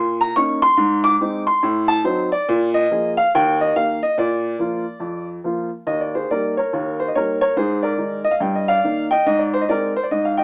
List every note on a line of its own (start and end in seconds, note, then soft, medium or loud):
0.00 0.30 A#2 medium
0.00 0.14 C6 loud
0.21 0.34 A#5 loud
0.36 0.60 A#3 medium
0.36 0.60 C#4 medium
0.36 0.60 D#4 medium
0.36 0.59 C#6 loud
0.62 0.99 C6 loud
0.77 1.14 G#2 loud
1.04 1.41 D6 loud
1.21 1.44 G#3 medium
1.21 1.44 C4 medium
1.21 1.45 D#4 medium
1.47 1.83 C6 loud
1.63 1.99 A2 medium
1.88 2.02 A5 loud
2.04 2.28 F#3 medium
2.04 2.29 C4 medium
2.04 2.29 D#4 medium
2.04 2.28 C5 medium
2.32 2.68 D5 loud
2.49 2.85 A#2 loud
2.74 3.11 D#5 loud
2.91 3.14 F3 medium
2.91 3.15 A#3 medium
2.91 3.15 G#4 medium
3.17 3.31 F5 loud
3.35 3.70 D#2 loud
3.35 3.57 G5 loud
3.61 3.74 D#5 medium
3.76 3.99 D#3 soft
3.76 3.99 A#3 soft
3.76 3.99 G4 soft
3.76 3.98 F5 medium
4.03 4.16 D#5 medium
4.18 4.54 A#2 medium
4.18 5.26 D5 medium
4.59 4.82 F3 soft
4.59 4.83 A#3 soft
4.59 4.83 F4 medium
5.00 5.37 F2 medium
5.44 5.68 F3 medium
5.44 5.68 A#3 soft
5.44 5.68 F4 medium
5.87 6.23 D#2 medium
5.87 6.00 D#5 medium
6.00 6.14 D5 medium
6.15 6.29 G#4 soft
6.15 6.28 C5 medium
6.31 6.54 G3 soft
6.31 6.54 A#3 soft
6.31 6.54 D#4 soft
6.31 6.55 A#4 medium
6.31 6.53 D5 medium
6.57 6.97 A#4 medium
6.57 6.93 C#5 medium
6.73 7.09 D#2 medium
7.00 7.07 C5 medium
7.08 7.15 D#5 medium
7.15 7.39 G3 soft
7.15 7.39 A#3 soft
7.15 7.39 D#4 soft
7.15 7.40 A#4 medium
7.15 7.38 C#5 medium
7.41 7.56 A#4 medium
7.41 7.54 C#5 medium
7.56 7.92 G#2 medium
7.56 7.82 G#4 medium
7.56 7.79 C5 medium
7.83 8.23 A#4 medium
7.83 8.19 D5 medium
7.97 8.21 D#3 soft
7.97 8.22 G#3 soft
7.97 8.22 D#4 medium
8.24 8.33 D#5 loud
8.31 8.40 F5 medium
8.40 8.77 G2 medium
8.40 8.55 G5 medium
8.55 8.68 D#5 medium
8.68 9.08 D5 medium
8.68 9.04 F5 loud
8.84 9.07 D#3 soft
8.84 9.08 A#3 medium
8.84 9.08 D#4 medium
9.11 9.25 D#5 medium
9.11 9.24 G5 loud
9.26 9.62 G#2 medium
9.26 9.40 D#5 medium
9.39 9.53 D5 medium
9.54 9.61 C5 medium
9.61 9.69 D#5 medium
9.69 9.92 G#3 soft
9.69 9.92 C4 soft
9.69 9.92 D#4 medium
9.69 9.95 A#4 medium
9.69 9.92 D5 medium
9.96 10.04 C5 medium
10.03 10.11 D5 medium
10.11 10.44 G#2 medium
10.11 10.24 D#5 medium
10.25 10.38 F5 medium
10.37 10.44 D#5 medium
10.37 10.44 G5 medium